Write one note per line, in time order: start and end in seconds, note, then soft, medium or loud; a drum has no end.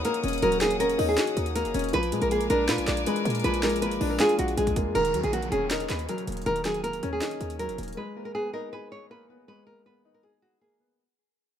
0.00 0.43 F#3 medium
0.00 0.05 A#3 medium
0.00 0.22 C#4 medium
0.00 0.43 D#4 loud
0.00 0.61 F#4 medium
0.00 1.90 C#5 medium
0.00 1.90 F#5 medium
0.00 1.90 D#6 medium
0.05 0.60 A#3 loud
0.05 0.19 A#4 medium
0.05 closed hi-hat medium
0.14 closed hi-hat medium
0.24 0.42 D#1 loud
0.24 0.79 C#4 medium
0.24 closed hi-hat medium
0.28 closed hi-hat medium
0.33 closed hi-hat medium
0.38 closed hi-hat soft
0.42 0.97 D#1 loud
0.42 1.37 F#3 loud
0.42 0.57 A#4 loud
0.42 closed hi-hat medium
0.52 closed hi-hat medium
0.61 1.54 A#3 medium
0.61 0.75 G#4 medium
0.61 snare loud
0.61 clap medium
0.61 closed hi-hat medium
0.71 closed hi-hat medium
0.80 1.73 C#4 medium
0.80 1.07 A#4 medium
0.80 closed hi-hat medium
0.90 closed hi-hat medium
0.98 1.17 D#2 loud
0.98 1.93 D#4 loud
0.98 open hi-hat medium
1.09 1.53 G#4 medium
1.18 1.93 F#4 medium
1.18 snare loud
1.18 clap medium
1.18 closed hi-hat medium
1.27 closed hi-hat medium
1.37 1.66 D#2 loud
1.37 closed hi-hat medium
1.46 closed hi-hat medium
1.55 1.93 A#3 medium
1.55 1.91 A#4 medium
1.55 closed hi-hat medium
1.65 1.74 F#1 medium
1.65 closed hi-hat medium
1.74 1.93 D#1 loud
1.74 1.93 C#4 medium
1.74 closed hi-hat medium
1.79 closed hi-hat medium
1.84 closed hi-hat medium
1.89 closed hi-hat soft
1.93 2.14 A#1 loud
1.93 2.87 F3 medium
1.93 4.92 A#4 medium
1.93 2.20 B4 loud
1.93 4.92 G#5 medium
1.93 4.92 D6 medium
1.93 closed hi-hat medium
2.03 closed hi-hat medium
2.12 2.21 A#2 loud
2.12 3.05 G#3 medium
2.12 closed hi-hat medium
2.22 2.49 A#1 loud
2.22 2.29 A#4 medium
2.22 closed hi-hat medium
2.31 3.24 A#3 medium
2.31 2.46 G#4 loud
2.31 closed hi-hat medium
2.41 closed hi-hat medium
2.50 2.70 A#1 loud
2.50 3.44 D4 loud
2.50 2.64 A#4 loud
2.50 closed hi-hat medium
2.69 2.80 A#2 loud
2.69 3.63 F4 medium
2.69 2.83 B4 medium
2.69 snare loud
2.69 clap medium
2.69 closed hi-hat medium
2.78 2.87 A#1 loud
2.78 closed hi-hat medium
2.88 3.06 A#1 loud
2.88 3.02 D5 medium
2.88 snare medium
2.88 clap medium
2.88 closed hi-hat medium
2.97 closed hi-hat medium
3.06 3.62 G#3 loud
3.06 3.21 B4 medium
3.06 closed hi-hat medium
3.16 closed hi-hat medium
3.25 3.44 A#2 loud
3.25 3.80 A#3 medium
3.25 closed hi-hat medium
3.30 closed hi-hat medium
3.35 closed hi-hat medium
3.40 closed hi-hat soft
3.44 3.84 A#1 loud
3.44 4.39 F3 medium
3.44 3.59 B4 loud
3.44 closed hi-hat medium
3.54 closed hi-hat medium
3.63 4.56 G#3 medium
3.63 3.77 A#4 medium
3.63 snare loud
3.63 clap medium
3.63 closed hi-hat medium
3.69 closed hi-hat medium
3.76 closed hi-hat medium
3.81 4.00 G#1 loud
3.81 4.75 A#3 medium
3.81 4.09 B4 medium
3.81 closed hi-hat medium
3.91 closed hi-hat medium
4.01 4.19 A#1 loud
4.01 4.95 D4 medium
4.01 open hi-hat medium
4.10 4.17 A#4 medium
4.20 4.96 F4 medium
4.20 4.34 G#4 medium
4.20 snare loud
4.20 clap medium
4.20 closed hi-hat medium
4.29 closed hi-hat medium
4.39 4.57 A#1 loud
4.39 4.53 F#4 medium
4.39 closed hi-hat medium
4.48 closed hi-hat medium
4.57 4.87 A#1 loud
4.57 4.95 G#3 medium
4.57 4.93 G#4 medium
4.57 closed hi-hat medium
4.67 kick medium
4.67 closed hi-hat medium
4.76 4.95 A#3 medium
4.76 kick loud
4.76 closed hi-hat medium
4.86 4.95 F2 loud
4.95 5.16 D#1 loud
4.95 5.90 D#3 medium
4.95 5.22 A#4 loud
4.95 closed hi-hat medium
4.95 downlifter medium
5.05 closed hi-hat medium
5.14 5.23 D#2 loud
5.14 6.08 F#3 medium
5.14 closed hi-hat medium
5.23 5.51 A#1 loud
5.23 5.31 G#4 medium
5.23 closed hi-hat medium
5.33 6.26 A#3 medium
5.33 5.47 F#4 medium
5.33 closed hi-hat medium
5.43 closed hi-hat medium
5.52 5.88 D#1 loud
5.52 6.46 C#4 medium
5.52 5.66 G#4 medium
5.52 closed hi-hat medium
5.71 6.65 D#4 medium
5.71 5.85 A#4 medium
5.71 snare loud
5.71 clap medium
5.71 closed hi-hat medium
5.80 closed hi-hat medium
5.90 6.08 D#2 loud
5.90 6.04 B4 medium
5.90 snare medium
5.90 clap medium
5.90 closed hi-hat medium
5.99 closed hi-hat medium
6.09 6.63 F#3 medium
6.09 6.23 A#4 medium
6.09 closed hi-hat medium
6.18 closed hi-hat medium
6.27 6.45 D#1 loud
6.27 6.82 A#3 medium
6.27 closed hi-hat medium
6.32 closed hi-hat medium
6.37 closed hi-hat medium
6.42 closed hi-hat soft
6.46 7.01 D#1 loud
6.46 7.41 D#3 medium
6.46 6.60 A#4 loud
6.46 closed hi-hat medium
6.56 closed hi-hat medium
6.65 7.58 F#3 medium
6.65 6.80 G#4 medium
6.65 snare loud
6.65 clap medium
6.65 closed hi-hat medium
6.74 closed hi-hat medium
6.84 7.76 A#3 medium
6.84 7.10 A#4 medium
6.84 closed hi-hat medium
6.93 closed hi-hat medium
7.03 7.21 D#2 loud
7.03 7.97 C#4 loud
7.03 closed hi-hat medium
7.13 7.57 G#4 medium
7.22 7.97 D#4 medium
7.22 snare loud
7.22 clap medium
7.22 closed hi-hat medium
7.31 closed hi-hat medium
7.41 7.70 D#2 loud
7.41 closed hi-hat medium
7.50 closed hi-hat medium
7.59 7.97 F#3 medium
7.59 7.95 A#4 medium
7.59 closed hi-hat medium
7.69 7.78 F#1 loud
7.69 closed hi-hat medium
7.78 7.96 D#1 loud
7.78 7.97 A#3 medium
7.78 closed hi-hat medium
7.83 closed hi-hat medium
7.88 closed hi-hat medium
7.93 closed hi-hat soft
7.97 8.92 G#3 medium
7.97 8.24 B4 loud
8.16 9.09 A#3 medium
8.25 8.32 A#4 medium
8.35 9.28 B3 medium
8.35 8.49 G#4 medium
8.53 9.48 D#4 loud
8.53 8.68 A#4 medium
8.73 9.67 G#4 medium
8.73 8.87 B4 medium
8.92 9.06 C#5 medium
9.10 9.65 A#3 medium
9.10 9.25 B4 medium
9.30 9.84 B3 medium
9.48 10.42 G#3 medium
9.48 9.62 B4 loud
9.67 10.60 A#3 medium
9.67 9.81 A#4 medium
9.86 10.79 B3 medium
9.86 10.13 B4 medium
10.05 10.99 D#4 medium
10.14 10.21 A#4 medium
10.23 10.38 G#4 medium
10.23 10.99 G#4 medium
10.42 10.57 F#4 medium
10.61 10.99 A#3 medium
10.61 10.97 G#4 medium
10.80 10.99 B3 medium